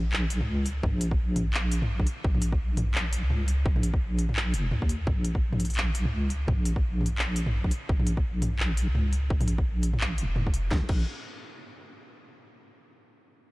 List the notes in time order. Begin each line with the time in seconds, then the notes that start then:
Already playing: A#1
0.13 A#1, clap
0.30 closed hi-hat
0.41 C#2, mid tom
0.66 closed hi-hat
0.83 A#1, kick, mid tom
1.01 closed hi-hat
1.11 kick
1.36 closed hi-hat, mid tom
1.54 A#1, clap
1.72 closed hi-hat
1.82 mid tom
2.00 kick
2.07 closed hi-hat
2.24 A#1, kick
2.35 mid tom
2.42 closed hi-hat
2.52 kick
2.77 closed hi-hat, mid tom
2.95 A#1, clap
3.13 closed hi-hat
3.23 C#2
3.30 mid tom
3.48 closed hi-hat
3.66 A#1, kick
3.76 mid tom
3.83 closed hi-hat
3.94 kick
4.19 closed hi-hat
4.29 mid tom
4.36 clap
4.54 F1, closed hi-hat
4.71 D#2, mid tom
4.82 kick
4.89 closed hi-hat
5.07 A#1, kick, mid tom
5.25 closed hi-hat
5.35 kick
5.53 mid tom
5.60 closed hi-hat
5.65 closed hi-hat
5.70 closed hi-hat
5.74 A#1, clap, closed hi-hat
5.95 closed hi-hat
6.05 C#2, mid tom
6.30 closed hi-hat
6.48 A#1, kick, mid tom
6.65 closed hi-hat
6.76 kick
7.01 mid tom
7.06 closed hi-hat
7.18 A#1, clap
7.36 closed hi-hat
7.46 mid tom
7.64 kick
7.71 closed hi-hat
7.89 A#1, kick
8.00 mid tom
8.07 closed hi-hat
8.17 kick
8.42 closed hi-hat, mid tom
8.59 A#1, clap
8.77 closed hi-hat
8.88 C#2
8.95 mid tom
9.13 closed hi-hat
9.30 A#1, kick
9.41 closed hi-hat, mid tom
9.48 closed hi-hat
9.58 kick
9.83 closed hi-hat
9.93 mid tom
10.01 A#1, clap
10.18 F1, closed hi-hat
10.29 F1
10.36 mid tom
10.47 kick
10.54 closed hi-hat
10.71 A#1, kick, snare
10.89 A#1, kick, crash